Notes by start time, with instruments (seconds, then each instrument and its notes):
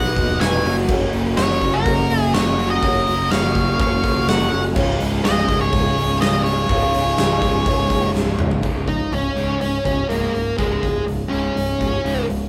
Already playing: picked electric bass B1, overdriven electric guitar B2 F#3 B3 D#4 F#4 B4, twelve-string acoustic guitar F#3 B3 D#4 B4, string machine F#3 B3 D#4 B4, lead electric guitar D#5 F#5
0.16 picked electric bass D#1, twelve-string acoustic guitar F#3 B3 D#4 B4, kick, open hi-hat
0.39 picked electric bass F1, twelve-string acoustic guitar B2 D#3 F#3 B3 D#4 B4, lead electric guitar C#5 G#5, snare, open hi-hat
0.64 picked electric bass F#1, overdriven electric guitar F#2 C#3 F#3 A#3 C#4 F#4, twelve-string acoustic guitar F#3 C#4 F#4 A#4, string machine A#3 C#4 F#4 C#5, open hi-hat
0.88 picked electric bass F#1, upright piano F#4 A#4 C#5, kick, crash
1.13 picked electric bass F#1, twelve-string acoustic guitar C#4 F#4 A#4, open hi-hat
1.37 picked electric bass F#1, twelve-string acoustic guitar F#3 C#4 F#4 A#4, lead electric guitar F#4 C#5, snare, open hi-hat
1.50 snare
1.61 picked electric bass F#1, twelve-string acoustic guitar C#4 F#4 A#4, kick, open hi-hat
1.74 lead electric guitar F#4 A#4
1.86 picked electric bass F#1, twelve-string acoustic guitar F#3 C#4 F#4 A#4, upright piano F#4 A#4 C#5, kick, open hi-hat
2.10 picked electric bass F#1, twelve-string acoustic guitar C#4 F#4 A#4, upright piano F#4 A#4 D#5, open hi-hat
2.17 lead electric guitar E4
2.22 lead electric guitar G#4
2.34 picked electric bass F#1, twelve-string acoustic guitar F#3 C#4 F#4 A#4, lead electric guitar F#4 C#5, snare, open hi-hat
2.58 overdriven electric guitar F#2 C#3 F#3 A#3 C#4 F#4, open hi-hat
2.70 lead electric guitar A#4 D#5
2.82 picked electric bass F#1, twelve-string acoustic guitar F#3 C#4 F#4 A#4, upright piano F#4 A#4 C#5, kick, open hi-hat
3.07 picked electric bass F#1, twelve-string acoustic guitar C#4 F#4 A#4, open hi-hat
3.30 picked electric bass F#1, twelve-string acoustic guitar F#3 C#4 F#4 A#4, lead electric guitar C#5 F5, snare, open hi-hat
3.44 snare
3.55 picked electric bass F#1, twelve-string acoustic guitar C#4 F#4 A#4, kick, open hi-hat
3.79 picked electric bass F#1, twelve-string acoustic guitar F#3 C#4 F#4 A#4, upright piano F#4 A#4 C#5, lead electric guitar C#5 F5, kick, open hi-hat
4.03 picked electric bass B1, twelve-string acoustic guitar C#4 F#4 A#4, upright piano F#4 A#4 C#5, kick, open hi-hat
4.28 picked electric bass F#1, twelve-string acoustic guitar F#3 C#4 F#4 A#4, lead electric guitar C#5 F#5, snare, open hi-hat
4.52 picked electric bass F#1, open hi-hat
4.75 picked electric bass C#1, overdriven electric guitar C#2 G#2 C#3 G#3 F4, twelve-string acoustic guitar C#3 G#3 C#4 F4 G#4, string machine G#3 C#4 F4 C#5, upright piano F4 G#4 C#5, kick, crash
5.00 picked electric bass C#1, twelve-string acoustic guitar C#4 F4 G#4, open hi-hat
5.24 picked electric bass C#1, twelve-string acoustic guitar C#3 G#3 C#4 F4 G#4, lead electric guitar G#4 D#5, snare, open hi-hat
5.37 snare
5.49 picked electric bass C#1, twelve-string acoustic guitar C#4 F4 G#4, kick, open hi-hat
5.61 lead electric guitar G#4 C#5
5.71 picked electric bass C#1, twelve-string acoustic guitar G#3 C#4 F4, upright piano F4 G#4 C#5, kick, open hi-hat
5.75 twelve-string acoustic guitar G#4
5.96 picked electric bass C#1, twelve-string acoustic guitar C#4 F4 G#4, upright piano F4 G#4 C#5, open hi-hat
6.21 picked electric bass C#1, twelve-string acoustic guitar C#3 G#3 C#4 F4 G#4, lead electric guitar G#4 D#5, snare, open hi-hat
6.43 lead electric guitar G#4 C#5, open hi-hat
6.68 picked electric bass C#1, overdriven electric guitar C#2 G#2 C#3 G#3 F4, twelve-string acoustic guitar C#3 G#3 C#4 F4 G#4, upright piano F4 G#4 C#5, kick, open hi-hat
6.93 picked electric bass C#1, twelve-string acoustic guitar C#4 F4 G#4, open hi-hat
7.17 picked electric bass C#1, twelve-string acoustic guitar C#3 G#3 C#4 F4 G#4, snare, open hi-hat
7.42 picked electric bass C#1, twelve-string acoustic guitar C#4 F4 G#4, kick, open hi-hat
7.66 picked electric bass C#1, twelve-string acoustic guitar G#3 C#4 F4 G#4, upright piano F4 G#4 C#5, kick, open hi-hat
7.90 picked electric bass F#1, twelve-string acoustic guitar C#4 F4 G#4, upright piano F4 G#4 C#5, kick, open hi-hat
8.14 picked electric bass C#1, twelve-string acoustic guitar C#3 G#3 C#4 F4 G#4, snare
8.39 picked electric bass C#1, mid tom
8.51 floor tom
8.61 picked electric bass C#1, overdriven electric guitar C#2 G#2 C#3, twelve-string acoustic guitar C#3 G#3 C#4 F4 G#4, kick, open hi-hat
8.87 overdriven electric guitar C#2 G#2, lead electric guitar D#4, kick, open hi-hat
9.12 picked electric bass C#1, overdriven electric guitar C#2 G#2, lead electric guitar C#4, open hi-hat
9.36 picked electric bass C#1, overdriven electric guitar C#2 G#2 C#3, open hi-hat
9.60 picked electric bass C#1, overdriven electric guitar C#2 G#2, twelve-string acoustic guitar C#3 G#3 C#4 F4 G#4, lead electric guitar C#4, open hi-hat
9.85 picked electric bass C#1, overdriven electric guitar C#2 G#2, lead electric guitar C#4, kick, open hi-hat
10.09 picked electric bass C#1, overdriven electric guitar C#2 G#2 C#3, twelve-string acoustic guitar G#3 C#4 F4 G#4, lead electric guitar A#3, open hi-hat
10.34 picked electric bass C#1, overdriven electric guitar C#2 G#2, open hi-hat
10.58 picked electric bass C#1, overdriven electric guitar C#2 G#2 C#3, twelve-string acoustic guitar C#3 G#3 C#4 F4 G#4, lead electric guitar G#3, kick, open hi-hat
10.82 picked electric bass C#1, overdriven electric guitar C#2 G#2, twelve-string acoustic guitar C#4 F4 G#4, kick, open hi-hat
11.07 picked electric bass C#1, overdriven electric guitar C#2 G#2, open hi-hat
11.29 picked electric bass C#1, overdriven electric guitar C#2 G#2 C#3, lead electric guitar C#4, open hi-hat
11.55 picked electric bass C#1, overdriven electric guitar C#2 G#2, twelve-string acoustic guitar C#3 G#3 C#4 F4 G#4, open hi-hat
11.80 picked electric bass C#1, overdriven electric guitar C#2 G#2, kick, open hi-hat
12.05 picked electric bass C#1, overdriven electric guitar C#2 G#2 C#3, open hi-hat
12.29 picked electric bass C#1, overdriven electric guitar C#2 G#2, open hi-hat